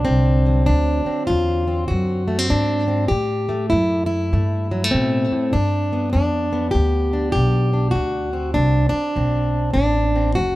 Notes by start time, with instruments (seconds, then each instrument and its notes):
Already playing: steel-string acoustic guitar D3 F#3 D4
0.05 upright bass C2, steel-string acoustic guitar D2 C4
0.46 steel-string acoustic guitar F#3
0.66 steel-string acoustic guitar D2 D4, upright bass D2
1.06 steel-string acoustic guitar C4, muted upright bass stroke
1.27 steel-string acoustic guitar D2 F4, upright bass E2
1.67 steel-string acoustic guitar C4
1.88 steel-string acoustic guitar D2 F#4, upright bass F#2
2.28 steel-string acoustic guitar A3
2.39 steel-string acoustic guitar C4
2.50 steel-string acoustic guitar D2 D4, upright bass G#2
2.88 steel-string acoustic guitar C4
3.08 upright bass A2, steel-string acoustic guitar A2 G4
3.49 steel-string acoustic guitar A3
3.70 upright bass F#2, steel-string acoustic guitar A2 E4
4.06 steel-string acoustic guitar E4
4.33 upright bass G2, steel-string acoustic guitar A2 A3
4.71 steel-string acoustic guitar F#3
4.84 steel-string acoustic guitar A3
4.91 upright bass A2, steel-string acoustic guitar B2 C4
5.32 steel-string acoustic guitar A2
5.53 upright bass G2, steel-string acoustic guitar G2 D4
5.93 steel-string acoustic guitar B3
6.13 upright bass F2, steel-string acoustic guitar G2 D4
6.53 steel-string acoustic guitar B3
6.71 upright bass D2, steel-string acoustic guitar G4
6.77 steel-string acoustic guitar G2
7.13 steel-string acoustic guitar D4
7.32 upright bass B1, steel-string acoustic guitar G4
7.36 steel-string acoustic guitar G2
7.73 steel-string acoustic guitar D4
7.91 steel-string acoustic guitar D2 F#4
7.95 upright bass D2
8.33 steel-string acoustic guitar C4
8.54 upright bass C2, steel-string acoustic guitar D2 D4
8.89 steel-string acoustic guitar D4, muted upright bass stroke
9.16 upright bass B1, steel-string acoustic guitar D2 C4
9.74 upright bass A1, steel-string acoustic guitar D2 D4
10.16 steel-string acoustic guitar C4
10.35 upright bass F#1, steel-string acoustic guitar D2 F#4